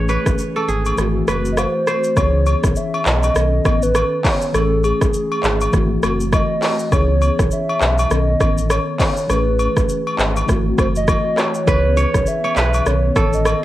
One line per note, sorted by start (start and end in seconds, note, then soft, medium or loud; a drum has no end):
0.00 0.17 A1 loud
0.00 0.94 E3 medium
0.00 0.95 A3 medium
0.00 0.96 C#4 medium
0.00 0.97 G#4 medium
0.00 0.22 A4 medium
0.00 0.94 C#5 loud
0.09 1.27 B4 medium
0.09 high agogo medium
0.09 shaker medium
0.26 0.36 G#1 medium
0.26 kick loud
0.26 cross-stick medium
0.26 shaker medium
0.38 shaker medium
0.56 0.74 A4 medium
0.56 high agogo medium
0.68 0.92 G#1 medium
0.68 2.05 G#4 medium
0.68 shaker medium
0.85 high agogo medium
0.85 shaker medium
0.96 1.22 G#1 loud
0.96 2.13 E3 medium
0.96 2.14 A3 medium
0.96 2.15 C4 medium
0.96 cross-stick medium
0.96 shaker medium
1.01 2.16 F#4 medium
1.27 1.66 F#1 medium
1.27 1.93 B4 medium
1.27 cross-stick medium
1.27 high agogo medium
1.27 shaker medium
1.45 shaker medium
1.52 1.59 D#5 medium
1.57 2.19 C5 loud
1.57 cross-stick loud
1.57 high agogo medium
1.57 low woodblock medium
1.57 shaker medium
1.87 3.06 C5 medium
1.87 cross-stick medium
1.87 high agogo medium
1.87 shaker medium
2.04 shaker medium
2.14 2.55 C#2 loud
2.14 3.32 E3 medium
2.14 3.33 B3 medium
2.14 3.34 C#4 medium
2.14 2.78 C#5 loud
2.14 kick loud
2.14 cross-stick medium
2.14 high agogo medium
2.14 shaker medium
2.20 2.26 G4 medium
2.26 3.38 G#4 medium
2.46 high agogo medium
2.46 shaker medium
2.64 2.74 B1 medium
2.64 kick loud
2.64 cross-stick medium
2.64 shaker medium
2.76 3.07 E5 loud
2.76 shaker medium
2.94 high agogo medium
3.06 3.30 B1 loud
3.06 3.84 D#5 loud
3.06 clap loud
3.06 shaker medium
3.23 high agogo medium
3.23 shaker medium
3.33 3.60 B1 loud
3.33 4.51 D#3 medium
3.33 4.52 B3 medium
3.33 4.52 C#4 medium
3.33 cross-stick loud
3.33 shaker medium
3.38 4.53 A4 medium
3.65 4.03 A1 medium
3.65 kick medium
3.65 cross-stick loud
3.65 high agogo medium
3.65 shaker medium
3.82 4.26 B4 loud
3.82 shaker medium
3.95 cross-stick loud
3.95 high agogo medium
3.95 shaker medium
4.25 4.54 C#5 loud
4.25 kick loud
4.25 clap medium
4.25 open hi-hat medium
4.25 high agogo medium
4.25 shaker medium
4.41 shaker medium
4.52 4.92 A1 loud
4.52 5.70 E3 medium
4.52 5.71 A3 medium
4.52 5.71 C#4 medium
4.52 4.86 A4 loud
4.52 cross-stick medium
4.52 high agogo medium
4.52 shaker medium
4.57 5.72 G#4 medium
4.84 6.03 G#4 medium
4.84 high agogo medium
4.84 shaker medium
5.01 5.12 G#1 medium
5.01 kick loud
5.01 cross-stick medium
5.01 shaker medium
5.14 shaker medium
5.32 high agogo medium
5.44 5.68 G#1 medium
5.44 clap loud
5.44 shaker medium
5.61 high agogo medium
5.61 shaker medium
5.71 5.97 G#1 loud
5.71 6.88 E3 medium
5.71 6.89 A3 medium
5.71 6.90 C4 medium
5.71 kick medium
5.71 cross-stick medium
5.71 shaker medium
5.76 6.91 F#4 medium
6.03 6.41 F#1 medium
6.03 cross-stick loud
6.03 high agogo medium
6.03 shaker medium
6.20 shaker medium
6.32 6.95 D#5 loud
6.32 kick loud
6.32 cross-stick loud
6.32 high agogo medium
6.32 shaker medium
6.62 clap medium
6.62 open hi-hat medium
6.62 high agogo medium
6.62 shaker medium
6.79 shaker medium
6.90 7.30 C#2 loud
6.90 8.07 E3 medium
6.90 8.08 B3 medium
6.90 8.09 C#4 medium
6.90 7.54 C#5 loud
6.90 kick loud
6.90 cross-stick medium
6.90 high agogo medium
6.90 shaker medium
6.95 8.10 G#4 medium
7.22 high agogo medium
7.22 shaker medium
7.39 7.49 B1 loud
7.39 kick loud
7.39 cross-stick medium
7.39 shaker medium
7.51 8.13 E5 loud
7.51 shaker medium
7.69 high agogo medium
7.81 8.05 B1 loud
7.81 clap loud
7.81 shaker medium
7.98 high agogo medium
7.98 shaker medium
8.08 8.35 B1 loud
8.08 9.26 D#3 medium
8.08 9.27 B3 medium
8.08 9.28 C#4 medium
8.08 8.73 D#5 loud
8.08 cross-stick medium
8.08 shaker medium
8.13 9.29 A4 medium
8.40 8.79 A1 medium
8.40 kick medium
8.40 cross-stick medium
8.40 high agogo medium
8.40 shaker medium
8.58 shaker medium
8.70 9.30 C#5 loud
8.70 cross-stick loud
8.70 high agogo medium
8.70 shaker medium
9.00 kick loud
9.00 clap medium
9.00 open hi-hat medium
9.00 high agogo medium
9.00 shaker medium
9.17 shaker medium
9.27 9.68 A1 loud
9.27 10.45 E3 medium
9.27 10.46 A3 medium
9.27 10.47 C#4 medium
9.27 10.45 B4 medium
9.27 cross-stick medium
9.27 high agogo medium
9.27 shaker medium
9.32 10.47 G#4 medium
9.59 high agogo medium
9.59 shaker medium
9.77 9.87 G#1 medium
9.77 kick loud
9.77 cross-stick medium
9.77 shaker medium
9.89 shaker medium
10.07 high agogo medium
10.19 10.43 G#1 medium
10.19 clap loud
10.19 shaker medium
10.36 high agogo medium
10.36 shaker medium
10.46 10.73 G#1 loud
10.46 11.64 E3 medium
10.46 11.65 A3 medium
10.46 11.65 C4 medium
10.46 kick medium
10.46 cross-stick medium
10.46 shaker medium
10.51 11.66 F#4 medium
10.78 11.16 F#1 medium
10.78 10.87 C5 medium
10.78 kick medium
10.78 cross-stick medium
10.78 high agogo medium
10.78 shaker medium
10.96 11.40 D#5 loud
10.96 shaker medium
11.08 kick loud
11.08 cross-stick loud
11.08 high agogo medium
11.08 shaker medium
11.38 12.29 C#5 loud
11.38 cross-stick medium
11.38 clap medium
11.38 high agogo medium
11.38 shaker medium
11.54 shaker medium
11.65 12.05 C#2 loud
11.65 12.83 E3 medium
11.65 12.83 B3 medium
11.65 12.84 C#4 medium
11.65 12.56 B4 loud
11.65 kick loud
11.65 cross-stick medium
11.65 high agogo medium
11.65 shaker medium
11.70 12.85 G#4 medium
11.97 12.44 C#5 medium
11.97 high agogo medium
11.97 shaker medium
12.14 12.24 B1 medium
12.14 kick loud
12.14 cross-stick medium
12.14 shaker medium
12.26 12.89 E5 loud
12.26 shaker medium
12.44 13.59 C#5 medium
12.44 high agogo medium
12.56 12.81 B1 loud
12.56 13.64 B4 medium
12.56 clap loud
12.56 shaker medium
12.74 high agogo medium
12.74 shaker medium
12.84 13.10 B1 loud
12.84 12.92 C#3 medium
12.84 13.64 B3 medium
12.84 13.64 C#4 medium
12.84 13.36 C#5 loud
12.84 cross-stick medium
12.84 shaker medium
12.89 13.64 D#3 medium
12.89 13.64 A4 medium
13.16 13.54 A1 medium
13.16 13.64 A4 medium
13.16 kick medium
13.16 cross-stick loud
13.16 high agogo medium
13.16 shaker medium
13.33 13.64 D#5 loud
13.33 shaker medium
13.45 cross-stick loud
13.45 high agogo medium
13.45 shaker medium